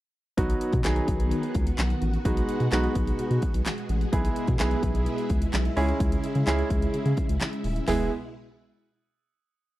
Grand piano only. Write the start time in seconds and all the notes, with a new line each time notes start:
0.37 F#3 B3 D#4 F#4
0.84 F#3 B3 D#4 G#4
2.25 G#3 B3 D#4 F#4
2.72 G#3 B3 D#4 F#4
4.12 G#3 B3 E4 G#4
4.59 G#3 B3 E4 G#4
5.76 G#3 C#4 E4 G#4
6.47 G#3 C#4 E4 G#4
7.88 G#3 B3 E4 G#4